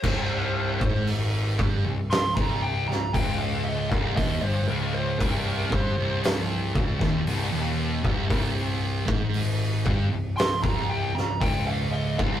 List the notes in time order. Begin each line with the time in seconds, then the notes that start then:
Already playing: C5
0.03 C1 C2, kick, crash
0.80 G#1 G#2, kick
1.07 open hi-hat
1.58 G1 G2, kick
1.85 C1 C2
2.10 C6, snare, open hi-hat
2.35 C1 C2 A#5, kick
2.62 G5
2.88 C1 C2 A#5, snare
3.13 C#1 C#2 G5, kick, open hi-hat
3.39 F5
3.64 D#5
3.90 C1 C2 F5, kick
4.15 D#1 D#2 D#5, kick, open hi-hat
4.42 G1 G2 C5
4.67 C#1 C#2 A#4
4.93 C5
5.19 C1 C2 A#4, kick, open hi-hat
5.71 G1 G2 C5, kick
5.97 C1 C2
6.24 snare, open hi-hat
6.75 C#1 C#2, kick
7.00 D#1 D#2, kick, snare
7.27 C1 C2, open hi-hat
7.52 D#1 D#2
8.05 C1 C2, kick
8.30 C1 C2, kick, open hi-hat
9.08 G#1 G#2, kick
9.34 open hi-hat
9.85 G1 G2, kick
10.12 C1 C2
10.37 C6, snare, open hi-hat
10.63 C1 C2 A#5, kick
10.89 G5
11.15 C1 C2 A#5, snare
11.40 C#1 C#2 G5, kick, open hi-hat
11.67 F5
11.91 D#5
12.18 C1 C2 F5, kick